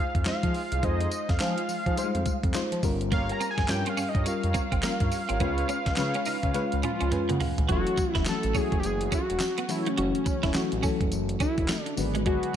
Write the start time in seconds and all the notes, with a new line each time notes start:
Already playing: G#3 D#4 F4 C5 F5
0.15 F2, kick, closed hi-hat
0.25 G#3 D#4 F4 C5 F5, snare, clap, closed hi-hat
0.43 F3 D#4 F4 G#4 C5, kick, closed hi-hat
0.54 open hi-hat
0.72 C2 D#4 F4 G#4 C5, closed hi-hat
0.83 F2 G#3 D#4 F4 G#4 C5 D#5, kick, closed hi-hat
1.01 closed hi-hat
1.11 closed hi-hat, tambourine
1.29 F2 F5, kick, snare, closed hi-hat
1.40 F3 G#3 D#4 F4 G#4 C5, snare, clap, closed hi-hat, tambourine
1.58 closed hi-hat
1.69 F3, open hi-hat, tambourine
1.86 F3 D#4 F4 G#4 C5, kick, closed hi-hat
1.97 G3 D#4 F4 C5, closed hi-hat, tambourine
2.04 G#3
2.15 F2, closed hi-hat
2.26 kick, closed hi-hat, tambourine
2.43 F2, kick, closed hi-hat
2.54 G#3 D#4 F4 C5, snare, clap, closed hi-hat, tambourine
2.72 F3, closed hi-hat
2.83 G1 G3 C#4 F4 A#4, kick, open hi-hat, tambourine
3.01 closed hi-hat
3.11 A#3 F4 G4 A#4 C#5 F5, kick, closed hi-hat
3.29 A#5, closed hi-hat
3.40 C4, closed hi-hat, tambourine
3.51 G#5
3.58 G1, muted clean electric guitar stroke, kick, snare, closed hi-hat
3.68 G2 G3 C#4 F4 G4 A#4 C#5 G5, muted clean electric guitar stroke, snare, clap, closed hi-hat, tambourine
3.86 C4 F5, closed hi-hat
3.97 G2 C#4, open hi-hat, tambourine
4.09 D#5
4.15 G2 F4 G4 A#4 C#5, kick, closed hi-hat
4.26 G3 C#4 F4 A#4 F5, muted clean electric guitar stroke, closed hi-hat, tambourine
4.43 F2 F4 G4 A#4 C#5, closed hi-hat
4.54 C4, kick, closed hi-hat, tambourine
4.72 G1 C4, kick, closed hi-hat
4.83 G3 A#3 C#4 F4 A#4, snare, clap, closed hi-hat, tambourine
5.00 G2 F4 G4 A#4 C#5, kick, closed hi-hat
5.12 muted clean electric guitar stroke, open hi-hat, tambourine
5.29 G#1 C4 F4 G4 A#4 C#5, closed hi-hat
5.40 C#2 G#3 B3 C#4 F4 G#4 B4 C#5, kick, closed hi-hat
5.58 closed hi-hat
5.69 C#4, closed hi-hat, tambourine
5.86 C#2, muted clean electric guitar stroke, kick, snare, closed hi-hat
5.96 C#3 G#3 C#4 F4 G#4 B4 C#5, muted clean electric guitar stroke, snare, clap, closed hi-hat, tambourine
6.14 C#4, closed hi-hat
6.25 C#3 D#4, open hi-hat, tambourine
6.43 C#3 F4 G#4 B4 C#5, kick, closed hi-hat
6.54 G#3 C#4 F4 B4, muted clean electric guitar stroke, closed hi-hat, high tom
6.72 C#2, closed hi-hat
6.83 C#4 F4 B5, closed hi-hat, mid tom
7.01 C#2 C#4, closed hi-hat
7.11 G#3 C#4 F4 B4 G#5, muted clean electric guitar stroke, closed hi-hat, mid tom
7.29 C#3 A#3 F#5, closed hi-hat, mid tom
7.40 G#3 F5, floor tom, open hi-hat
7.58 C#2, closed hi-hat, floor tom
7.69 F#1 E3 F#3 A3 C#4 E4 F#4 A4 C#5, kick, closed hi-hat
7.87 closed hi-hat
7.97 muted clean electric guitar stroke, kick, closed hi-hat, tambourine
8.12 E1 E4, kick, snare, closed hi-hat
8.25 E3 F#3 A3 C#4 F#4 A4, snare, clap, closed hi-hat, tambourine
8.43 A1, closed hi-hat
8.54 E3 F#3 A3 C#4 E4 F#4 G#4 A4 C#5, kick, open hi-hat, tambourine
8.72 F#1, kick, closed hi-hat
8.80 G4, closed hi-hat, tambourine
8.84 F#1 G#4
9.01 E4 F#4 A4 C#5, closed hi-hat
9.12 C#4 F#4, kick, closed hi-hat, tambourine
9.30 E1, closed hi-hat
9.40 snare, clap, closed hi-hat, tambourine
9.58 B3, closed hi-hat
9.69 E3 F#3 A3 C#4 E4 F#4 A4 C#5, muted clean electric guitar stroke, open hi-hat, tambourine
9.86 A3 C#4, closed hi-hat
9.97 F#1 E3 F#3 A3 C#4 F#4, closed hi-hat
10.15 closed hi-hat
10.26 muted clean electric guitar stroke, kick, closed hi-hat, tambourine
10.43 E1 E4 F#4 A4 C#5, kick, snare, closed hi-hat
10.54 E3 F#3 A3 C#4 F#4, snare, clap, closed hi-hat, tambourine
10.72 A1, closed hi-hat
10.83 E3 F#3 A3 C#4 A4, kick, open hi-hat, tambourine
11.01 F#1, kick, closed hi-hat
11.12 F#1, closed hi-hat, tambourine
11.29 closed hi-hat
11.40 C#4 E4, kick, closed hi-hat, tambourine
11.58 E1, kick, closed hi-hat
11.68 A3, snare, clap, closed hi-hat, tambourine
11.83 D4, muted clean electric guitar stroke, closed hi-hat
11.97 G#1 D3 F#3 G#3 B3 D4 F#4 G#4 B4, open hi-hat, tambourine
12.15 G#3, closed hi-hat
12.26 G#3 D4 F#4 G#4 B4, kick, closed hi-hat
12.43 closed hi-hat